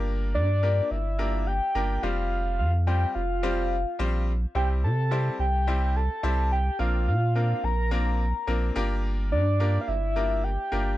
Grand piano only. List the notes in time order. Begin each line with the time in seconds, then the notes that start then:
Already playing: A#3 D4 F4 G4 A#4
0.63 A#3 D4 F4 G4 A#4
1.19 A#3 D4 F4 G4 A#4
1.75 A#3 D4 F4 G4 A#4
2.03 G3 C4 F4 G4 C5
2.87 G3 C4 F4 G4 C5
3.43 G3 C4 F4 G4 C5
3.99 G3 C4 F4 G4 C5
4.55 G3 C4 E4 G4 C5
5.11 G3 C4 E4 G4 C5
5.67 G3 C4 E4 G4 C5
6.23 G3 C4 E4 G4 C5
6.79 A#3 C4 D4 F4 A#4
7.35 A#3 C4 D4 F4 A#4
7.91 A#3 C4 D4 F4 A#4
8.47 A#3 C4 D4 F4 A#4
8.75 A#3 D4 F4 G4 A#4
9.60 A#3 D4 F4 G4 A#4
10.16 A#3 D4 F4 G4 A#4
10.72 A#3 D4 F4 G4 A#4